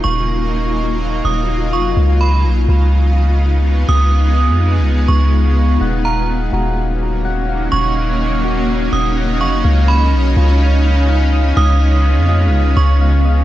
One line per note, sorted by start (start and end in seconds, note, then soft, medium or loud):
0.00 1.93 C#3 medium
0.00 1.93 F#3 medium
0.00 1.93 A#3 medium
0.00 1.93 D#4 medium
0.00 5.77 F4 loud
0.00 1.20 C#6 loud
0.05 1.21 D#1 loud
1.25 1.74 D#1 loud
1.25 1.70 D#6 medium
1.73 1.95 F1 medium
1.73 1.96 C#6 medium
1.97 2.46 C#2 loud
1.97 5.77 C#3 medium
1.97 5.77 G#3 medium
1.97 5.77 B3 medium
1.97 5.77 D#4 medium
2.21 2.43 B5 medium
2.45 2.67 B1 loud
2.69 3.85 C#2 loud
3.89 4.50 C#2 loud
3.89 5.05 D#6 loud
4.49 4.80 F2 loud
4.79 5.07 C#2 loud
5.08 5.78 C#2 loud
5.08 5.76 C#6 medium
5.81 6.50 D#1 loud
5.81 13.44 C#3 medium
5.81 9.61 F#3 medium
5.81 9.61 A#3 medium
5.81 13.44 C#4 loud
5.81 13.44 D#4 medium
5.81 7.24 F#5 loud
6.05 7.48 F5 medium
6.05 6.28 A#5 medium
6.53 7.69 D#1 loud
6.53 7.97 F#4 loud
7.25 7.72 F#5 loud
7.49 7.96 F5 medium
7.72 8.89 D#1 loud
7.72 9.16 F#5 loud
7.72 8.88 C#6 loud
7.97 9.39 F5 medium
8.44 9.64 F#4 loud
8.93 9.42 D#1 loud
8.93 9.38 D#6 medium
9.17 9.65 F#5 loud
9.40 9.63 F1 medium
9.40 9.63 F5 medium
9.40 9.64 C#6 medium
9.64 10.14 C#2 loud
9.64 13.44 G#3 medium
9.64 13.44 B3 medium
9.64 11.07 F5 loud
9.88 11.32 D#5 medium
9.88 10.11 B5 loud
10.13 10.35 B1 loud
10.37 11.53 C#2 loud
10.37 11.81 F4 medium
11.09 11.55 F5 loud
11.33 11.80 D#5 medium
11.56 12.18 C#2 loud
11.56 13.00 F5 loud
11.56 12.73 D#6 loud
11.81 13.24 D#5 medium
12.17 12.48 F2 loud
12.29 13.44 F4 loud
12.47 12.75 C#2 loud
12.77 13.44 C#2 loud
12.77 13.44 C#6 medium
13.01 13.44 F5 loud
13.25 13.44 D#5 medium